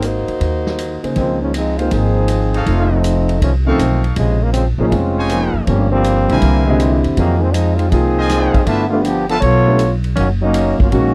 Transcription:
Already playing: G#1
0.02 A#3 D#4 F#4 C5, hi-hat pedal, ride
0.28 muted upright bass stroke, ride
0.40 D#2, kick, ride
0.67 snare
0.79 hi-hat pedal, ride
1.03 C#3 A#3 D#4 G#4 C5, muted upright bass stroke, ride
1.16 C#2 D#3 F3 G#3 C4, kick, ride
1.41 D#3 F3 G#3 C#4
1.54 F3 G#3 C4 D#4, hi-hat pedal, ride
1.77 G#3 A#3 C4 D#4 F4 G#4 C5, ride
1.91 G#1 F3 C4 D#4 G#4, kick, ride
2.28 hi-hat pedal, ride
2.54 D#4 A4 C#5 F5, ride
2.64 F1 A3 C4 D#4 F4, kick, ride
2.89 F3 A3 C4 D#4
3.04 hi-hat pedal, ride
3.29 ride
3.40 C2 D#3 F3 A3 C#4, kick, ride
3.66 D#3 F3 A3 C4 C#4 D#4 A4 F5 C#6
3.78 B1, hi-hat pedal, ride
4.04 ride
4.16 A#1 C3 C#3 F3 G#3, kick, ride
4.41 C#3 F3 G#3 A#3
4.52 C#3 F3 G#3 C4, hi-hat pedal, ride
4.78 A1 C3 F3 G#3 A#3 C#4 D#4 G#4
4.87 G#3 C4 C#4 E4 F4
4.92 F1, kick, ride
5.17 D#4 C5 C#5 G#5
5.30 F3 A#3 D#4 G#4, hi-hat pedal, ride
5.54 F#1
5.64 G1 F3 G3 A#3 C#4, kick, ride
5.91 F3 G3 A#3 C4
6.04 hi-hat pedal, ride
6.29 A#1 D3 G3 C4 E4 A#4 C5 G#5, ride
6.39 C2 C3 E3 G3 A#3, kick, ride
6.65 A#2 C3 E3 G#3
6.69 D3 C4 E4 G4
6.80 hi-hat pedal, ride
7.04 E2, ride
7.16 F2 C3 D#3 F3 F#3 A#3 D#4 G#4, kick, ride
7.39 D#3 F3 G#3 C4
7.52 F3 G#3 C4 D#4, hi-hat pedal, ride
7.76 G#3 C4 D#4 F4, ride
7.89 C2 F3 A#3 C4 D#4 G#4, kick, ride
7.93 D#4 F4
8.17 F4 C5 D#5 G#5
8.30 snare, hi-hat pedal, ride
8.54 kick, ride
8.65 G1 A3 B3 D4 E4 F4 B4 E5 A5, kick, ride
8.89 A3 B3 D4 F4 G4 B4
9.02 F3 B3 D4 G4, hi-hat pedal, ride
9.28 F3 B3 D4 F4 A4 B4 E5 A5, ride
9.41 B1 B3 F4 A4 C#5, kick, ride
9.67 A3 D4 G4 B4
9.79 hi-hat pedal, ride
10.04 ride
10.16 F#1 D#3 F#3 A#3 C#4, kick, ride
10.42 F#3 A#3 C#4 D#4
10.54 hi-hat pedal, ride
10.79 G1 F#3 A#3 C#4 F4, kick
10.91 A#1 D#3 G#3 A#3 C#4 F#4, kick, ride

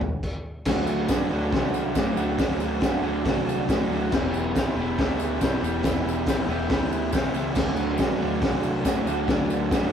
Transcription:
0.01 E1 E2 B2, kick, floor tom
0.23 kick, crash
0.65 D2 D3 F#3 A3 D4, kick, snare, crash, tambourine
0.69 F#4
0.87 D2, tambourine
1.08 G2 D3 F#3 A3 D4 F#4, kick, snare, open hi-hat, tambourine
1.29 D2 D3 F#3 A3 D4 F#4
1.51 C2 D3 F#3 A3 D4 F#4, kick, snare, open hi-hat
1.74 C2, tambourine
1.95 A2 D3 F#3 A3 D4 F#4, kick, snare, open hi-hat, tambourine
2.16 D2 D3 F#3 A3 D4 F#4, tambourine
2.38 D2 D3 F#3 A3 D4 F#4, kick, snare, open hi-hat, tambourine
2.59 D2, tambourine
2.81 G2 D3 F#3 A3 D4, kick, snare, open hi-hat, tambourine
2.85 F#4
3.02 D2 D3 F#3 A3 D4
3.06 F#4
3.23 C2 D3 F#3 A3 D4, kick, snare, open hi-hat
3.27 F#4
3.45 C2, tambourine
3.68 A2 D3 F#3 A3 D4 F#4, kick, snare, open hi-hat, tambourine
3.88 D2 D3 F#3 A3
3.93 D4 F#4
4.12 E1 E3 B3 E4 G4, kick, snare, crash, tambourine
4.31 E1, tambourine
4.55 E3 B3 E4 G4, kick, snare, open hi-hat, tambourine
4.75 E1 E3
4.79 B3 E4 G4
4.98 D2 E3 B3 E4 G4, kick, snare, open hi-hat
5.18 D2, tambourine
5.40 B1 E3 B3 E4 G4, kick, snare, open hi-hat, tambourine
5.61 E1 E3 B3 E4 G4, tambourine
5.83 E1 E3 B3 E4 G4, kick, snare, open hi-hat, tambourine
6.04 E1
6.08 tambourine
6.26 A1 E3 B3 E4 G4, kick, snare, open hi-hat, tambourine
6.46 E1 E3 B3, tambourine
6.50 E4 G4
6.68 D2 E3 B3 E4 G4, kick, snare, open hi-hat, tambourine
6.91 D2, tambourine
7.12 B1 E3 B3 E4 G4, kick, snare, open hi-hat, tambourine
7.32 C#2 E3 B3 E4, tambourine
7.36 G4
7.53 D2 D3 F#3 A3 D4 F#4, kick, snare, crash, tambourine
7.74 D2, tambourine
7.97 G2 D3 F#3 A3 D4 F#4, kick, snare, open hi-hat, tambourine
8.19 D2 D3 F#3 A3 D4 F#4
8.40 C2 D3 F#3 A3 D4 F#4, kick, snare, open hi-hat
8.63 C2, tambourine
8.83 A2 D3 F#3 A3 D4 F#4, kick, snare, open hi-hat, tambourine
9.05 D2 D3 F#3 A3 D4, tambourine
9.10 F#4
9.27 D2 D3 F#3 A3 D4 F#4, kick, snare, open hi-hat, tambourine
9.49 D2, tambourine
9.70 G2 D3 F#3 A3 D4 F#4, kick, snare, open hi-hat, tambourine

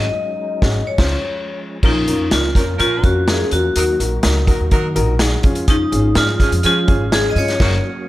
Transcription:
Already playing: F#3 G#3 C#4 D#4 D#5
0.62 G#1 C#4 F#4 G#4, kick, snare
0.87 F3 C#5
0.98 C#2 C#4 F4 C5, kick, snare, crash
1.83 A#1 F3 A#3 C#4 D#4 F4 A#4, kick, crash
2.07 F2 C#4 F4 A#4, closed hi-hat
2.31 C#2 C#4 F4 A#4, snare, closed hi-hat
2.55 F2 F3 C#4 F4 A#4, kick, snare, closed hi-hat
2.79 A#2 F3 C#4 F4 A#4, closed hi-hat
3.03 F2 C#4 F4 F#4 A#4, kick, closed hi-hat
3.27 C#4 F4 G#4 A#4, snare, closed hi-hat
3.51 E2 C#4 F4 F#4 A#4, closed hi-hat
3.75 D#2 F#3 D#4 F#4 A#4, closed hi-hat
4.00 A#1 D#4 F#4 A#4, closed hi-hat
4.23 C#2 D#4 F#4 A#4, snare, closed hi-hat
4.47 F#3 D#4 F#4 A#4, kick, closed hi-hat
4.60 D#2
4.71 D#3 F#3 D#4 F#4 A#4, kick, closed hi-hat
4.95 A#1 D#4 F#4 A#4, closed hi-hat
5.19 D#4 F#4 G#4, snare, closed hi-hat
5.43 F2 F3 G#3 C#4 F4 G#4, kick, closed hi-hat
5.55 closed hi-hat
5.68 F3 C#4 D#4 G#4 D#6, kick, closed hi-hat
5.92 G#1 C#4 F4 G#4, closed hi-hat
6.15 G#2 C#4 F4 G#4 F6, snare, closed hi-hat
6.40 F3 C#4 F4 G#4, kick, snare, closed hi-hat
6.52 F2, closed hi-hat
6.63 F3 C#4 F4 G#4 F6, closed hi-hat
6.88 G#1 C#4 F4 G#4, kick, closed hi-hat
7.12 C#4 F4 G#4 G#6, snare, closed hi-hat
7.30 D#5 D#7
7.35 G2 C#4 F4 G#4 C#5 C#7, open hi-hat
7.48 snare, closed hi-hat
7.60 F#1 C#3 F#3 A#3 C#4 F#4 A#4, kick, snare, crash

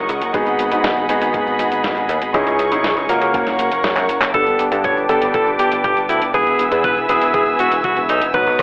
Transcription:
Already playing: C#4 D#4 F#4 A#4 D#5 F#5 C#6
0.09 C#2, closed hi-hat, cabasa
0.22 F#1, closed hi-hat, cabasa
0.34 G#1 B3 D#4 F#4 G#4 B5, kick, closed hi-hat, cabasa
0.47 G#1, closed hi-hat, cabasa
0.59 G#1, closed hi-hat, cabasa
0.72 G#2 B3 D#4 F#4 G#4, closed hi-hat, cabasa
0.84 G#1, kick, snare, closed hi-hat, cabasa
0.97 G#1, cabasa
1.09 G#1 B3 D#4 F#4 G#4, closed hi-hat, cabasa
1.22 G#1, closed hi-hat, cabasa
1.34 G#1, kick, closed hi-hat, cabasa
1.47 G#1, cabasa
1.59 G#1, closed hi-hat, cabasa
1.72 G#1, closed hi-hat, cabasa
1.84 G#1, kick, snare, closed hi-hat, cabasa
1.97 G#1, closed hi-hat, cabasa
2.09 D#2, closed hi-hat, cabasa
2.22 G#1, closed hi-hat, cabasa
2.34 C#2 C#4 D#4 E4 G#4 C#6, kick, closed hi-hat, cabasa
2.47 C#2, closed hi-hat, cabasa
2.59 C#2, closed hi-hat, cabasa
2.72 G#1 C#4 D#4 E4 G#4, closed hi-hat, cabasa
2.84 C#2, kick, snare, closed hi-hat, cabasa
2.97 C#2, closed hi-hat, cabasa
3.09 C#2 A#3 C#4 F#4 A#4, closed hi-hat, cabasa
3.22 C#2, kick, closed hi-hat, cabasa
3.34 F#1 A#4 C#5 F#5 C#6, kick, closed hi-hat, cabasa
3.47 F#1, snare, closed hi-hat, cabasa
3.59 F#1, closed hi-hat, cabasa
3.72 F#1, closed hi-hat, cabasa
3.84 F#2, kick, snare, closed hi-hat, cabasa
3.97 F#2, clap, closed hi-hat, cabasa
4.09 F#1, closed hi-hat, cabasa
4.22 F#1, clap, closed hi-hat, cabasa
4.34 G1 B3 D4 G4 A4 B4 G5 A5 D6, kick, closed hi-hat, mid tom, cabasa
4.47 G1, closed hi-hat, cabasa
4.59 G1, closed hi-hat, cabasa
4.72 G2 B3 D4 G4 A4, closed hi-hat, cabasa
4.84 G1 C#5, kick, closed hi-hat, mid tom, cabasa
4.97 G1, cabasa
5.09 G1 B3 D4 G4 A4, closed hi-hat, cabasa
5.22 G1, closed hi-hat, cabasa
5.34 G1 A4, kick, closed hi-hat, mid tom, cabasa
5.47 G1, cabasa
5.59 G1 G4, closed hi-hat, cabasa
5.72 G1, closed hi-hat, cabasa
5.84 G1 G4, kick, closed hi-hat, mid tom, cabasa
5.97 G1, closed hi-hat, cabasa
6.09 D2 E4, closed hi-hat, cabasa
6.22 G1, closed hi-hat, cabasa
6.34 E1 B3 E4 G#4 B4 E5 G#5 E6, kick, closed hi-hat, mid tom, cabasa
6.47 E1, closed hi-hat, cabasa
6.59 E1, closed hi-hat, cabasa
6.72 E2 B3 E4 G#4 B4, closed hi-hat, cabasa
6.84 E1 B4, kick, closed hi-hat, mid tom, cabasa
6.97 E1, cabasa
7.09 E1 B3 E4 G#4 B4, closed hi-hat, cabasa
7.22 E1, closed hi-hat, cabasa
7.34 E1 G#4, kick, closed hi-hat, mid tom, cabasa
7.47 E1, cabasa
7.59 E1 F#4, closed hi-hat, cabasa
7.72 E1, closed hi-hat, cabasa
7.84 E1 F#4, kick, closed hi-hat, mid tom, cabasa
7.97 E1, closed hi-hat, cabasa
8.09 B1 D#4, closed hi-hat, cabasa
8.22 E1, closed hi-hat, cabasa
8.34 B1 F#3 B3 D#4 F#4 B4 D#5 F#5 D#6, kick, closed hi-hat, mid tom, cabasa
8.47 B1, closed hi-hat, cabasa
8.59 B1, closed hi-hat, mid tom, cabasa

